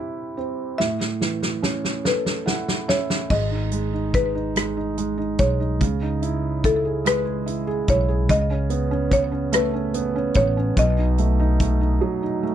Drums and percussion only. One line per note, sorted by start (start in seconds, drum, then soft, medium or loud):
0.80 snare soft
1.01 snare soft
1.22 snare soft
1.42 snare soft
1.63 snare medium
1.85 snare soft
2.05 snare medium
2.26 snare medium
2.47 snare medium
2.68 snare medium
2.89 snare medium
3.10 snare medium
3.30 kick medium
3.30 crash medium
3.72 closed hi-hat soft
4.14 kick medium
4.14 closed hi-hat soft
4.56 cross-stick medium
4.56 closed hi-hat medium
4.98 closed hi-hat soft
5.39 kick medium
5.39 closed hi-hat soft
5.81 kick medium
5.81 closed hi-hat medium
6.23 closed hi-hat soft
6.64 kick medium
6.64 closed hi-hat soft
7.06 cross-stick medium
7.06 closed hi-hat medium
7.47 closed hi-hat medium
7.88 kick medium
7.88 closed hi-hat soft
8.29 kick medium
8.29 closed hi-hat medium
8.70 closed hi-hat soft
9.11 kick medium
9.11 closed hi-hat medium
9.53 cross-stick loud
9.53 closed hi-hat medium
9.94 closed hi-hat medium
10.34 kick medium
10.34 closed hi-hat soft
10.77 kick medium
10.77 closed hi-hat medium
11.18 closed hi-hat medium
11.60 kick medium
11.60 closed hi-hat medium